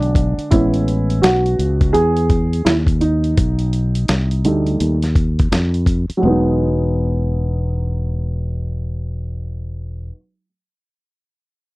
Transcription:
0.00 0.35 B1 medium
0.00 0.48 D3 medium
0.00 0.48 F#3 soft
0.00 0.48 G#3 medium
0.00 0.48 D4 medium
0.00 closed hi-hat soft
0.15 kick medium
0.15 closed hi-hat medium
0.38 muted fretless electric bass stroke soft
0.38 closed hi-hat soft
0.51 1.20 A1 loud
0.51 3.33 G#3 soft
0.51 3.34 B3 soft
0.51 3.34 C#4 medium
0.51 1.25 E4 medium
0.51 kick medium
0.51 closed hi-hat medium
0.74 closed hi-hat medium
0.88 closed hi-hat medium
1.10 closed hi-hat medium
1.22 1.57 B1 medium
1.22 1.96 F#4 medium
1.22 snare loud
1.22 closed hi-hat medium
1.46 closed hi-hat soft
1.59 1.93 C#2 medium
1.59 closed hi-hat medium
1.81 kick medium
1.81 closed hi-hat soft
1.93 2.62 E2 medium
1.93 2.67 G#4 medium
1.93 closed hi-hat medium
2.17 closed hi-hat soft
2.30 kick medium
2.30 closed hi-hat soft
2.53 closed hi-hat soft
2.65 3.34 D#2 medium
2.65 2.73 E4 medium
2.65 snare loud
2.65 closed hi-hat medium
2.87 kick medium
2.87 closed hi-hat soft
3.01 4.44 D#4 medium
3.01 closed hi-hat medium
3.24 closed hi-hat soft
3.37 4.05 B1 medium
3.37 kick medium
3.37 closed hi-hat medium
3.59 closed hi-hat soft
3.73 closed hi-hat medium
3.95 closed hi-hat medium
4.08 4.43 C2 medium
4.08 snare medium
4.08 closed hi-hat medium
4.31 closed hi-hat soft
4.44 4.79 D2 medium
4.44 4.95 G3 medium
4.44 4.96 A3 soft
4.44 4.96 D#4 medium
4.44 closed hi-hat medium
4.67 closed hi-hat soft
4.80 5.48 D#2 medium
4.80 closed hi-hat medium
5.02 snare soft
5.02 closed hi-hat soft
5.16 kick medium
5.16 closed hi-hat soft
5.39 kick medium
5.39 closed hi-hat soft
5.52 6.07 F2 medium
5.52 snare loud
5.52 closed hi-hat medium
5.74 closed hi-hat soft
5.86 kick medium
5.86 closed hi-hat medium
6.10 muted fretless electric bass stroke soft
6.10 closed hi-hat soft
6.17 10.04 F#3 medium
6.21 10.10 E1 medium
6.21 10.08 G#3 medium
6.21 10.12 B3 medium
6.29 10.16 D#4 medium

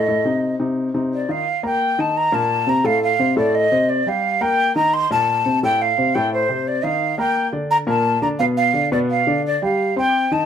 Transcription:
0.00 0.55 D#5 medium
0.08 0.22 A2 medium
0.08 0.22 A3 medium
0.08 0.22 A4 medium
0.25 0.53 C3 medium
0.25 0.54 C4 medium
0.25 0.54 D#4 medium
0.59 0.88 C3 medium
0.59 0.88 C4 medium
0.59 0.88 D#4 medium
0.94 1.23 C3 medium
0.94 1.23 C4 medium
0.94 1.23 D#4 medium
1.14 1.32 D5 medium
1.28 1.43 D#3 medium
1.28 1.43 D#4 medium
1.28 1.43 F4 medium
1.28 1.64 F5 medium
1.63 1.92 A#3 medium
1.63 1.92 A#4 medium
1.63 2.01 G5 loud
1.63 1.92 A#5 medium
1.98 2.27 D#3 medium
1.98 2.27 D#4 medium
1.98 2.27 D#5 medium
1.98 2.18 A5 medium
2.17 2.36 A#5 loud
2.32 2.61 A#2 medium
2.32 2.61 A#3 medium
2.32 2.61 A#4 medium
2.32 2.70 A5 medium
2.67 2.81 C3 medium
2.67 2.82 C4 medium
2.67 2.82 C5 medium
2.67 2.87 A#5 medium
2.84 3.13 A2 medium
2.84 3.13 A3 medium
2.84 3.13 A4 medium
2.84 3.02 F5 loud
3.03 3.35 F5 loud
3.19 3.33 C3 medium
3.19 3.34 C4 medium
3.19 3.34 C5 medium
3.36 3.65 A2 medium
3.36 3.65 A3 medium
3.36 3.65 A4 medium
3.36 3.56 D5 medium
3.54 3.90 D#5 loud
3.72 4.00 C3 medium
3.72 4.00 C4 medium
3.72 4.00 C5 medium
3.89 4.10 D5 medium
4.06 4.35 G3 medium
4.06 4.35 G4 medium
4.06 4.43 F5 loud
4.06 4.35 G5 medium
4.41 4.69 A#3 medium
4.41 4.69 A#4 medium
4.41 4.75 G5 loud
4.41 4.69 A#5 medium
4.75 5.04 D#3 medium
4.75 5.04 D#4 medium
4.75 5.04 D#5 medium
4.75 4.95 A#5 loud
4.93 5.10 C6 loud
5.11 5.39 A#2 medium
5.11 5.39 A#3 medium
5.11 5.39 A#4 medium
5.11 5.59 A5 loud
5.45 5.59 C3 medium
5.45 5.59 C4 medium
5.45 5.60 C5 medium
5.63 5.91 A2 medium
5.63 5.91 A3 medium
5.63 5.91 A4 medium
5.63 5.83 G5 loud
5.81 6.16 F5 loud
5.98 6.12 C3 medium
5.98 6.12 C4 medium
5.98 6.12 C5 medium
6.15 6.43 A2 medium
6.15 6.43 A3 medium
6.15 6.44 A4 medium
6.15 6.32 G5 medium
6.33 6.69 C5 medium
6.49 6.77 C3 medium
6.49 6.77 C4 medium
6.49 6.78 C5 medium
6.67 6.86 D5 medium
6.83 7.12 D#3 medium
6.83 7.12 D#4 medium
6.83 7.12 D#5 medium
6.83 7.18 F5 medium
7.18 7.46 A#3 medium
7.18 7.47 A#4 medium
7.18 7.47 G5 loud
7.18 7.47 A#5 medium
7.52 7.81 D3 medium
7.52 7.81 D4 medium
7.52 7.81 D5 medium
7.70 7.76 A#5 loud
7.87 8.16 A#2 medium
7.87 8.16 A#3 medium
7.87 8.16 A#4 medium
7.87 8.20 A5 medium
8.22 8.36 D3 medium
8.22 8.36 D4 medium
8.22 8.36 D5 medium
8.22 8.28 A#5 medium
8.39 8.68 B2 medium
8.39 8.68 B3 medium
8.39 8.68 B4 medium
8.39 8.45 F5 loud
8.57 8.89 F5 loud
8.73 8.88 D3 medium
8.73 8.88 D4 medium
8.73 8.89 D5 medium
8.92 9.20 B2 medium
8.92 9.20 B3 medium
8.92 9.20 B4 medium
8.92 8.98 D5 medium
9.10 9.42 F5 loud
9.27 9.55 D3 medium
9.27 9.55 D4 medium
9.27 9.55 D5 medium
9.46 9.61 D5 medium
9.62 9.90 G3 medium
9.62 9.90 G4 medium
9.62 9.95 F5 medium
9.62 9.90 G5 medium
9.96 10.25 C4 medium
9.96 10.25 C5 medium
9.96 10.34 G5 loud
9.96 10.25 C6 medium
10.31 10.46 D#3 medium
10.31 10.46 D#4 medium
10.31 10.46 D#5 medium
10.31 10.46 A5 medium

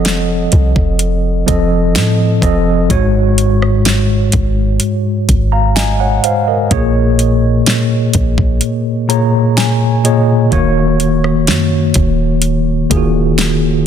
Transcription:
0.00 0.48 F1 loud
0.00 0.27 F3 loud
0.00 0.27 C4 loud
0.00 0.27 A4 loud
0.00 2.91 C#5 medium
0.00 0.31 D#5 loud
0.00 2.92 F#5 medium
0.05 snare loud
0.05 closed hi-hat medium
0.52 0.75 C2 loud
0.52 kick medium
0.52 closed hi-hat medium
0.76 1.45 F1 loud
0.76 kick medium
0.99 closed hi-hat medium
1.46 1.97 F1 loud
1.46 2.06 F3 medium
1.46 2.06 C4 medium
1.46 2.06 A4 medium
1.46 2.07 D#5 medium
1.46 kick medium
1.46 closed hi-hat medium
1.95 2.40 A2 loud
1.95 snare loud
1.95 closed hi-hat medium
2.42 2.88 F1 loud
2.42 2.72 F3 medium
2.42 2.72 C4 medium
2.42 2.72 A4 medium
2.42 2.72 D#5 loud
2.42 kick medium
2.42 closed hi-hat medium
2.89 4.29 G#1 loud
2.89 4.08 G#2 loud
2.89 4.08 G#3 medium
2.89 4.08 F#4 loud
2.89 4.09 C#5 loud
2.89 kick loud
2.89 closed hi-hat medium
3.38 closed hi-hat medium
3.62 cross-stick medium
3.85 snare loud
3.85 closed hi-hat medium
4.32 4.79 G#1 loud
4.32 kick medium
4.32 closed hi-hat medium
4.80 closed hi-hat medium
5.29 6.20 G#1 loud
5.29 kick medium
5.29 closed hi-hat medium
5.52 5.75 F5 medium
5.52 5.75 A#5 medium
5.76 5.99 D#5 medium
5.76 5.98 G#5 medium
5.76 snare loud
5.76 closed hi-hat medium
6.00 6.23 C#5 medium
6.00 6.22 F#5 medium
6.24 6.46 C5 medium
6.24 6.46 F5 medium
6.24 closed hi-hat medium
6.48 6.93 A#4 medium
6.48 6.93 D#5 medium
6.70 7.63 A#1 loud
6.70 7.89 A#2 loud
6.70 7.89 A#3 loud
6.70 7.89 G#4 loud
6.70 7.90 C#5 loud
6.70 kick loud
6.70 closed hi-hat medium
7.19 closed hi-hat medium
7.66 snare loud
7.66 closed hi-hat medium
8.13 8.37 A#1 loud
8.13 kick medium
8.13 closed hi-hat medium
8.38 8.61 A#1 loud
8.38 kick medium
8.61 closed hi-hat medium
9.08 9.68 A#2 medium
9.08 9.68 A#3 medium
9.08 9.68 G#4 medium
9.08 9.69 C#5 medium
9.08 9.53 A#5 medium
9.08 closed hi-hat medium
9.57 10.01 G#5 medium
9.57 snare loud
9.57 closed hi-hat medium
10.04 10.33 A#2 medium
10.04 10.34 A#3 medium
10.04 10.34 G#4 medium
10.04 10.35 C#5 medium
10.04 10.49 D#5 medium
10.04 closed hi-hat medium
10.51 11.50 D#1 loud
10.51 11.70 D#3 loud
10.51 11.70 A#3 loud
10.51 11.70 F#4 medium
10.51 11.70 C#5 loud
10.51 kick loud
10.51 closed hi-hat medium
11.00 closed hi-hat medium
11.24 cross-stick medium
11.47 11.93 F#2 medium
11.47 snare loud
11.47 closed hi-hat medium
11.94 12.87 D#1 loud
11.94 kick medium
11.94 closed hi-hat medium
12.42 closed hi-hat medium
12.89 13.87 D#1 medium
12.89 13.78 D#3 medium
12.89 13.79 A#3 medium
12.89 12.97 F4 medium
12.89 13.79 G#4 medium
12.89 kick medium
12.89 closed hi-hat medium
12.97 13.82 F#4 medium
13.38 snare loud
13.38 closed hi-hat medium

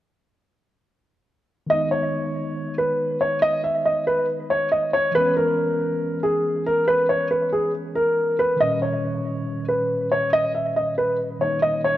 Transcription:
1.66 5.09 D#3 medium
1.66 5.11 G#3 medium
1.66 1.88 D#5 medium
1.71 5.12 B3 medium
1.71 5.13 D#4 medium
1.91 2.74 C#5 medium
2.78 3.18 B4 medium
3.21 3.39 C#5 medium
3.42 3.60 D#5 loud
3.64 3.82 E5 medium
3.85 4.03 D#5 medium
4.07 4.25 B4 medium
4.50 4.68 C#5 medium
4.72 4.90 D#5 medium
4.93 5.11 C#5 medium
5.11 8.55 E3 medium
5.11 8.56 G#3 medium
5.11 5.33 B4 loud
5.16 8.57 B3 medium
5.16 8.58 C#4 medium
5.36 6.19 A#4 medium
6.23 6.64 G#4 medium
6.66 6.84 A#4 medium
6.88 7.06 B4 loud
7.09 7.27 C#5 medium
7.31 7.49 B4 medium
7.53 7.70 G#4 medium
7.95 8.36 A#4 medium
8.39 8.57 B4 medium
8.56 11.35 D#3 medium
8.56 11.36 G3 medium
8.60 11.37 A#2 medium
8.60 11.38 C#4 medium
8.60 8.78 D#5 medium
8.82 9.64 C#5 medium
9.68 10.09 B4 medium
10.12 10.29 C#5 medium
10.33 10.51 D#5 loud
10.55 10.72 E5 medium
10.76 10.94 D#5 medium
10.98 11.16 B4 medium
11.39 11.97 D#3 medium
11.39 11.97 G3 soft
11.39 11.97 A#3 soft
11.39 11.97 D#4 medium
11.39 11.59 C#5 medium
11.62 11.80 D#5 medium
11.84 11.97 C#5 medium

